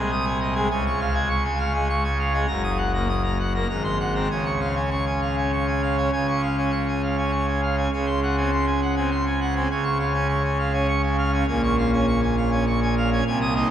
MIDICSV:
0, 0, Header, 1, 2, 480
1, 0, Start_track
1, 0, Key_signature, -5, "major"
1, 0, Tempo, 594059
1, 578, Time_signature, 3, 2, 24, 8
1, 2501, Tempo, 605449
1, 5861, Tempo, 590551
1, 11041, End_track
2, 0, Start_track
2, 0, Title_t, "Pipe organ"
2, 0, Program_c, 0, 19
2, 0, Note_on_c, 0, 36, 83
2, 0, Note_on_c, 0, 48, 85
2, 0, Note_on_c, 0, 56, 69
2, 0, Note_on_c, 0, 80, 77
2, 86, Note_off_c, 0, 56, 0
2, 87, Note_off_c, 0, 80, 0
2, 95, Note_on_c, 0, 87, 80
2, 204, Note_off_c, 0, 87, 0
2, 209, Note_on_c, 0, 80, 77
2, 320, Note_off_c, 0, 80, 0
2, 325, Note_on_c, 0, 75, 75
2, 438, Note_off_c, 0, 75, 0
2, 447, Note_on_c, 0, 56, 67
2, 448, Note_on_c, 0, 80, 79
2, 546, Note_off_c, 0, 48, 0
2, 547, Note_off_c, 0, 36, 0
2, 553, Note_off_c, 0, 56, 0
2, 553, Note_off_c, 0, 80, 0
2, 569, Note_on_c, 0, 49, 91
2, 570, Note_on_c, 0, 80, 86
2, 574, Note_on_c, 0, 37, 92
2, 680, Note_off_c, 0, 80, 0
2, 697, Note_on_c, 0, 85, 99
2, 804, Note_off_c, 0, 85, 0
2, 811, Note_on_c, 0, 77, 79
2, 920, Note_off_c, 0, 77, 0
2, 924, Note_on_c, 0, 56, 66
2, 927, Note_on_c, 0, 80, 79
2, 1036, Note_off_c, 0, 56, 0
2, 1038, Note_off_c, 0, 80, 0
2, 1043, Note_on_c, 0, 85, 75
2, 1156, Note_off_c, 0, 85, 0
2, 1166, Note_on_c, 0, 80, 73
2, 1278, Note_off_c, 0, 80, 0
2, 1281, Note_on_c, 0, 77, 63
2, 1395, Note_off_c, 0, 77, 0
2, 1405, Note_on_c, 0, 56, 67
2, 1407, Note_on_c, 0, 80, 79
2, 1517, Note_off_c, 0, 56, 0
2, 1519, Note_off_c, 0, 80, 0
2, 1532, Note_on_c, 0, 85, 76
2, 1642, Note_off_c, 0, 85, 0
2, 1648, Note_on_c, 0, 80, 77
2, 1759, Note_off_c, 0, 80, 0
2, 1773, Note_on_c, 0, 77, 67
2, 1882, Note_off_c, 0, 77, 0
2, 1888, Note_on_c, 0, 80, 77
2, 1889, Note_on_c, 0, 56, 70
2, 1981, Note_off_c, 0, 49, 0
2, 1984, Note_off_c, 0, 37, 0
2, 1994, Note_off_c, 0, 80, 0
2, 1995, Note_off_c, 0, 56, 0
2, 1999, Note_on_c, 0, 82, 88
2, 2000, Note_on_c, 0, 30, 94
2, 2001, Note_on_c, 0, 42, 89
2, 2115, Note_off_c, 0, 82, 0
2, 2128, Note_on_c, 0, 87, 95
2, 2240, Note_off_c, 0, 87, 0
2, 2246, Note_on_c, 0, 78, 79
2, 2359, Note_off_c, 0, 78, 0
2, 2375, Note_on_c, 0, 58, 64
2, 2378, Note_on_c, 0, 82, 67
2, 2485, Note_off_c, 0, 58, 0
2, 2487, Note_off_c, 0, 82, 0
2, 2496, Note_on_c, 0, 87, 73
2, 2604, Note_off_c, 0, 87, 0
2, 2613, Note_on_c, 0, 82, 66
2, 2722, Note_off_c, 0, 82, 0
2, 2738, Note_on_c, 0, 78, 59
2, 2845, Note_off_c, 0, 78, 0
2, 2862, Note_on_c, 0, 58, 59
2, 2864, Note_on_c, 0, 82, 71
2, 2940, Note_off_c, 0, 30, 0
2, 2941, Note_off_c, 0, 42, 0
2, 2958, Note_off_c, 0, 82, 0
2, 2962, Note_off_c, 0, 58, 0
2, 2971, Note_on_c, 0, 44, 75
2, 2973, Note_on_c, 0, 82, 66
2, 2974, Note_on_c, 0, 32, 83
2, 3082, Note_off_c, 0, 82, 0
2, 3092, Note_on_c, 0, 84, 78
2, 3202, Note_off_c, 0, 84, 0
2, 3220, Note_on_c, 0, 78, 65
2, 3327, Note_off_c, 0, 78, 0
2, 3336, Note_on_c, 0, 82, 70
2, 3338, Note_on_c, 0, 60, 62
2, 3441, Note_off_c, 0, 82, 0
2, 3442, Note_off_c, 0, 44, 0
2, 3442, Note_off_c, 0, 60, 0
2, 3444, Note_off_c, 0, 32, 0
2, 3460, Note_on_c, 0, 37, 75
2, 3461, Note_on_c, 0, 49, 73
2, 3461, Note_on_c, 0, 80, 74
2, 3570, Note_off_c, 0, 80, 0
2, 3578, Note_on_c, 0, 85, 78
2, 3689, Note_off_c, 0, 85, 0
2, 3697, Note_on_c, 0, 77, 62
2, 3809, Note_off_c, 0, 77, 0
2, 3815, Note_on_c, 0, 61, 56
2, 3816, Note_on_c, 0, 80, 64
2, 3928, Note_off_c, 0, 61, 0
2, 3929, Note_off_c, 0, 80, 0
2, 3936, Note_on_c, 0, 85, 67
2, 4050, Note_off_c, 0, 85, 0
2, 4060, Note_on_c, 0, 80, 58
2, 4172, Note_off_c, 0, 80, 0
2, 4182, Note_on_c, 0, 77, 56
2, 4293, Note_off_c, 0, 77, 0
2, 4307, Note_on_c, 0, 61, 55
2, 4312, Note_on_c, 0, 80, 61
2, 4416, Note_off_c, 0, 61, 0
2, 4419, Note_off_c, 0, 80, 0
2, 4429, Note_on_c, 0, 85, 68
2, 4538, Note_off_c, 0, 85, 0
2, 4545, Note_on_c, 0, 80, 60
2, 4656, Note_off_c, 0, 80, 0
2, 4666, Note_on_c, 0, 77, 66
2, 4776, Note_off_c, 0, 77, 0
2, 4785, Note_on_c, 0, 61, 57
2, 4785, Note_on_c, 0, 80, 69
2, 4881, Note_off_c, 0, 37, 0
2, 4881, Note_off_c, 0, 49, 0
2, 4888, Note_off_c, 0, 80, 0
2, 4890, Note_off_c, 0, 61, 0
2, 4901, Note_on_c, 0, 37, 81
2, 4901, Note_on_c, 0, 49, 76
2, 4904, Note_on_c, 0, 80, 63
2, 5014, Note_off_c, 0, 80, 0
2, 5021, Note_on_c, 0, 85, 79
2, 5131, Note_off_c, 0, 85, 0
2, 5141, Note_on_c, 0, 77, 63
2, 5250, Note_off_c, 0, 77, 0
2, 5259, Note_on_c, 0, 61, 58
2, 5264, Note_on_c, 0, 80, 64
2, 5369, Note_off_c, 0, 61, 0
2, 5372, Note_off_c, 0, 80, 0
2, 5377, Note_on_c, 0, 85, 56
2, 5487, Note_off_c, 0, 85, 0
2, 5500, Note_on_c, 0, 80, 61
2, 5608, Note_off_c, 0, 80, 0
2, 5617, Note_on_c, 0, 77, 56
2, 5726, Note_off_c, 0, 77, 0
2, 5736, Note_on_c, 0, 61, 56
2, 5737, Note_on_c, 0, 80, 66
2, 5844, Note_off_c, 0, 61, 0
2, 5844, Note_off_c, 0, 80, 0
2, 5849, Note_on_c, 0, 85, 64
2, 5961, Note_off_c, 0, 85, 0
2, 5970, Note_on_c, 0, 80, 57
2, 6082, Note_off_c, 0, 80, 0
2, 6100, Note_on_c, 0, 77, 64
2, 6208, Note_off_c, 0, 77, 0
2, 6222, Note_on_c, 0, 80, 67
2, 6223, Note_on_c, 0, 61, 58
2, 6304, Note_off_c, 0, 37, 0
2, 6304, Note_off_c, 0, 49, 0
2, 6325, Note_off_c, 0, 61, 0
2, 6325, Note_off_c, 0, 80, 0
2, 6343, Note_on_c, 0, 80, 76
2, 6344, Note_on_c, 0, 37, 69
2, 6347, Note_on_c, 0, 49, 75
2, 6450, Note_off_c, 0, 80, 0
2, 6455, Note_on_c, 0, 84, 76
2, 6567, Note_off_c, 0, 84, 0
2, 6590, Note_on_c, 0, 78, 66
2, 6695, Note_off_c, 0, 78, 0
2, 6704, Note_on_c, 0, 60, 52
2, 6705, Note_on_c, 0, 80, 62
2, 6812, Note_off_c, 0, 60, 0
2, 6813, Note_off_c, 0, 80, 0
2, 6828, Note_on_c, 0, 84, 63
2, 6935, Note_off_c, 0, 84, 0
2, 6947, Note_on_c, 0, 80, 60
2, 7055, Note_off_c, 0, 80, 0
2, 7068, Note_on_c, 0, 78, 54
2, 7175, Note_off_c, 0, 78, 0
2, 7188, Note_on_c, 0, 80, 60
2, 7190, Note_on_c, 0, 60, 58
2, 7295, Note_off_c, 0, 80, 0
2, 7296, Note_off_c, 0, 60, 0
2, 7308, Note_on_c, 0, 84, 65
2, 7415, Note_off_c, 0, 84, 0
2, 7433, Note_on_c, 0, 80, 61
2, 7538, Note_off_c, 0, 80, 0
2, 7549, Note_on_c, 0, 78, 67
2, 7656, Note_off_c, 0, 78, 0
2, 7667, Note_on_c, 0, 60, 56
2, 7671, Note_on_c, 0, 80, 69
2, 7756, Note_off_c, 0, 37, 0
2, 7758, Note_off_c, 0, 49, 0
2, 7769, Note_off_c, 0, 60, 0
2, 7771, Note_off_c, 0, 80, 0
2, 7789, Note_on_c, 0, 37, 84
2, 7791, Note_on_c, 0, 49, 82
2, 7791, Note_on_c, 0, 80, 68
2, 7897, Note_off_c, 0, 80, 0
2, 7897, Note_on_c, 0, 85, 85
2, 8008, Note_off_c, 0, 85, 0
2, 8025, Note_on_c, 0, 77, 65
2, 8133, Note_off_c, 0, 77, 0
2, 8140, Note_on_c, 0, 80, 60
2, 8142, Note_on_c, 0, 61, 57
2, 8251, Note_off_c, 0, 61, 0
2, 8251, Note_off_c, 0, 80, 0
2, 8264, Note_on_c, 0, 85, 62
2, 8373, Note_off_c, 0, 85, 0
2, 8390, Note_on_c, 0, 80, 65
2, 8496, Note_off_c, 0, 80, 0
2, 8510, Note_on_c, 0, 77, 58
2, 8616, Note_off_c, 0, 77, 0
2, 8623, Note_on_c, 0, 61, 58
2, 8627, Note_on_c, 0, 80, 69
2, 8732, Note_off_c, 0, 61, 0
2, 8735, Note_off_c, 0, 80, 0
2, 8744, Note_on_c, 0, 85, 74
2, 8853, Note_off_c, 0, 85, 0
2, 8865, Note_on_c, 0, 80, 65
2, 8973, Note_off_c, 0, 80, 0
2, 8988, Note_on_c, 0, 77, 71
2, 9096, Note_off_c, 0, 77, 0
2, 9112, Note_on_c, 0, 61, 62
2, 9114, Note_on_c, 0, 80, 72
2, 9197, Note_off_c, 0, 37, 0
2, 9198, Note_off_c, 0, 49, 0
2, 9213, Note_off_c, 0, 61, 0
2, 9214, Note_off_c, 0, 80, 0
2, 9232, Note_on_c, 0, 34, 93
2, 9232, Note_on_c, 0, 80, 80
2, 9234, Note_on_c, 0, 46, 93
2, 9338, Note_off_c, 0, 80, 0
2, 9357, Note_on_c, 0, 85, 89
2, 9461, Note_off_c, 0, 85, 0
2, 9476, Note_on_c, 0, 77, 76
2, 9580, Note_off_c, 0, 77, 0
2, 9598, Note_on_c, 0, 61, 61
2, 9599, Note_on_c, 0, 80, 78
2, 9701, Note_off_c, 0, 61, 0
2, 9701, Note_off_c, 0, 80, 0
2, 9716, Note_on_c, 0, 85, 70
2, 9820, Note_off_c, 0, 85, 0
2, 9836, Note_on_c, 0, 80, 70
2, 9940, Note_off_c, 0, 80, 0
2, 9960, Note_on_c, 0, 77, 62
2, 10062, Note_off_c, 0, 77, 0
2, 10075, Note_on_c, 0, 80, 74
2, 10076, Note_on_c, 0, 61, 66
2, 10178, Note_off_c, 0, 80, 0
2, 10179, Note_off_c, 0, 61, 0
2, 10199, Note_on_c, 0, 85, 71
2, 10301, Note_off_c, 0, 85, 0
2, 10322, Note_on_c, 0, 80, 79
2, 10422, Note_off_c, 0, 80, 0
2, 10446, Note_on_c, 0, 77, 72
2, 10544, Note_off_c, 0, 77, 0
2, 10568, Note_on_c, 0, 61, 74
2, 10569, Note_on_c, 0, 80, 82
2, 10633, Note_off_c, 0, 34, 0
2, 10634, Note_off_c, 0, 46, 0
2, 10660, Note_off_c, 0, 61, 0
2, 10660, Note_off_c, 0, 80, 0
2, 10681, Note_on_c, 0, 36, 93
2, 10682, Note_on_c, 0, 48, 91
2, 10687, Note_on_c, 0, 80, 85
2, 10783, Note_off_c, 0, 80, 0
2, 10807, Note_on_c, 0, 87, 100
2, 10903, Note_off_c, 0, 87, 0
2, 10918, Note_on_c, 0, 75, 87
2, 10919, Note_on_c, 0, 63, 81
2, 11018, Note_off_c, 0, 63, 0
2, 11018, Note_off_c, 0, 75, 0
2, 11041, Note_off_c, 0, 36, 0
2, 11041, Note_off_c, 0, 48, 0
2, 11041, End_track
0, 0, End_of_file